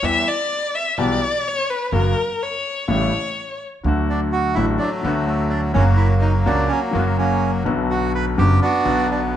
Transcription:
0.03 E2 E3 G3 B3 G4 E5
0.28 D5
0.75 E5
0.98 B1 B2 E3 G3 B3 G4 D5
1.48 C#5
1.70 B4
1.92 F#1 F#2 C#3 F#3 A#3 F#4 A#4
2.43 C#5
2.88 A1 A2 C#3 G3 A3 E4 C#5
3.84 D2 D3 F#3 A3
3.88 F#4
4.10 D4
4.32 F#4
4.54 A1 A2 D3 F#3 A3 E4 F#4
4.79 F#3 A3 D4
5.03 D2 D3 F#3 A3 B3 F#4
5.27 A3
5.50 D4
5.73 F#1 F#2 C#3 F#3 A#3 C#4 F#4
5.96 E4
6.21 D#4
6.46 C#2 C#3 F#3 A#3 D4 F#4
6.69 F#3 A#3 C#4
6.91 F#2 C#3 F#3 A#3 B3 F#4
6.95 F#1
7.18 F#3 A#3 C#4
7.64 B1 B2 D3 F#3 B3 F#4
7.90 F#4
8.15 B4
8.37 F#1 F#2 D3 F#3 B3 F#4 G4
8.62 B3 D4 F#4
8.84 B1 B2 D3 F#3 B3 F#4
9.11 D4

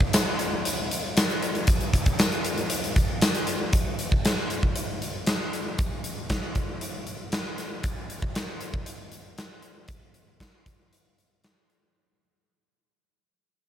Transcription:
0.01 kick
0.13 snare, closed hi-hat, tambourine
0.39 closed hi-hat
0.65 closed hi-hat
0.91 closed hi-hat
1.17 snare, closed hi-hat, tambourine
1.30 closed hi-hat
1.43 closed hi-hat
1.55 closed hi-hat
1.67 kick, closed hi-hat
1.81 closed hi-hat
1.94 kick, closed hi-hat
2.06 kick, closed hi-hat
2.19 snare, closed hi-hat, tambourine
2.32 closed hi-hat
2.45 closed hi-hat
2.58 closed hi-hat
2.70 closed hi-hat
2.84 closed hi-hat
2.96 kick, closed hi-hat
3.22 snare, closed hi-hat, tambourine
3.35 closed hi-hat
3.47 closed hi-hat
3.73 kick, closed hi-hat
3.99 closed hi-hat
4.12 kick
4.25 snare, closed hi-hat
4.50 closed hi-hat
4.63 kick
4.76 closed hi-hat
5.02 closed hi-hat
5.26 snare, closed hi-hat
5.53 closed hi-hat
5.79 kick, closed hi-hat
6.04 closed hi-hat
6.30 kick, snare, closed hi-hat
6.55 kick, closed hi-hat
6.81 closed hi-hat
7.07 closed hi-hat
7.32 snare, closed hi-hat
7.58 snare, closed hi-hat
7.83 kick, closed hi-hat
8.10 closed hi-hat
8.22 kick
8.35 snare, closed hi-hat
8.61 closed hi-hat
8.74 kick
8.86 closed hi-hat
9.12 closed hi-hat
9.38 snare, closed hi-hat
9.62 closed hi-hat
9.88 kick, closed hi-hat
10.14 closed hi-hat
10.40 kick, snare, closed hi-hat
10.66 kick, closed hi-hat
10.93 closed hi-hat
11.18 closed hi-hat
11.44 snare, closed hi-hat
11.70 closed hi-hat

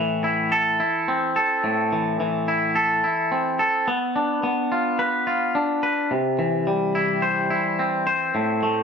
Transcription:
Already playing: A2 E3
0.24 E4
0.52 A4
0.80 E4
1.08 C4
1.36 A4
1.64 A2
1.92 E3
2.20 E3
2.48 E4
2.75 A4
3.04 E4
3.32 C4
3.59 A4
3.88 B3
4.16 D4
4.43 B3
4.72 F4
4.99 B4
5.27 F4
5.55 D4
5.83 B4
6.11 C3
6.39 E3
6.67 G3
6.95 E4
7.22 C5
7.50 E4
7.79 C4
8.07 C5
8.35 A2
8.63 A3

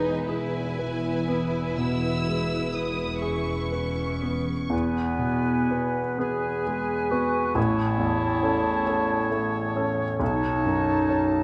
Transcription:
Already playing: E1 E2 G#3 D#4 B4 G#5
0.28 E4 G#4 G#5
0.79 B4
1.28 B3
1.77 B2 E6
2.28 G#3
2.74 B4 D#6
3.22 C#4 G#4 C#6
3.72 B4
4.22 B3
4.70 E2 B3 B4 G#5
5.19 B2
5.70 B3 B4
6.18 B3 G#4 B4 G#5
6.67 G#3
7.11 B3 F#4 B4
7.55 A1 E4 C#5 A5
7.98 E2
8.43 C#4 A4
8.86 C#4 A4
9.31 A3
9.76 C#4 A4
10.20 B1 D#4 C#5 A5
10.65 F#2
11.09 C#4 C#5

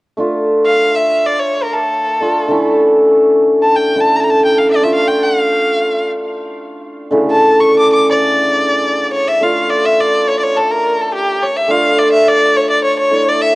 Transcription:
0.17 A3 D4 F4
0.66 F5
0.95 E5
1.26 D5
1.40 C#5
1.63 A#4
1.74 A4
2.21 A3 D4 F4
2.48 D3 A3 C#4 E4
3.63 A5
3.76 G5
3.95 D3 A3 C#4 E4
4.01 A5
4.16 A#5
4.20 A5 A#5
4.30 A5
4.45 G5
4.58 F5
4.71 D5
4.81 A3 D4 F4 E5
4.94 F5
5.08 G5
5.23 F5
7.11 C#3 D3 A3 E4
7.32 A5
7.61 C#6
7.79 D6
7.93 D6
8.11 D5
9.13 C#5
9.28 E5
9.40 A3 D4 F4 F5
9.70 D5
9.85 E5
10.00 D5
10.28 C#5
10.39 D5
10.43 C#5
10.57 A4
10.71 A#4
11.01 A4
11.14 G4
11.43 C#5
11.56 E5
11.68 A3 D4 F4 F5
11.99 D5
12.12 E5
12.28 D5
12.57 C#5
12.70 D5
12.84 C#5
12.99 C#5
13.11 A3 D4 E4
13.29 D5
13.42 E5

